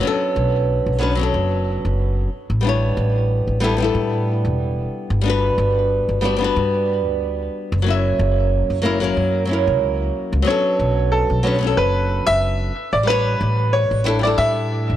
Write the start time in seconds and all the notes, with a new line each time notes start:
0.00 F#3 B3 C#4
0.05 D4 A4
0.36 B1
0.86 B1
0.99 F#3 B3 C#4 D4
1.03 B4
1.15 F#3 B3 C#4
1.21 D4 A4
1.34 F#1
1.85 F#1
2.50 A1
2.61 G3 B3 D4
2.67 E4 C#5
2.97 A1
3.47 A1
3.60 G3 B3 D4 E4
3.64 A4
3.77 G3 B3 D4
3.82 E4 A4
3.95 A2
4.45 E1
5.10 G1
5.21 G3 B3
5.26 D4 F#4
5.30 B4
5.58 G1
6.09 G1
6.21 G3 B3 D4 F#4
6.25 D5
6.37 G3 B3
6.41 D4 F#4 B4
6.56 G2
7.07 D2
7.72 F#1
7.82 F#3 A#3
7.86 C#4 E4 E5
8.19 F#1
8.70 F#1
8.82 F#3 A#3 C#4 E4 A#4
9.00 F#3 A#3 C#4 E4 A#4
9.17 F#2
9.45 F#3 A#3 C#4
9.51 E4 A#4
9.67 C#2
10.33 C#2
10.42 F#3 B3 C#4
10.47 D4 A4 C#5
10.79 B1
11.12 A4
11.30 B1
11.43 F#3 B3 C#4 D4 B4
11.59 F#3 B3 C#4
11.64 D4 A4
11.77 F#1 B4
12.27 F#1 E5
12.93 A1 D5
13.03 G3 B3
13.07 D4 B4 C#5
13.41 A1
13.73 C#5
13.91 A1
14.04 G3 B3 D4 E4 A4
14.19 G3 B3 D5
14.23 D4 E4 A4
14.38 A2 E5
14.90 E1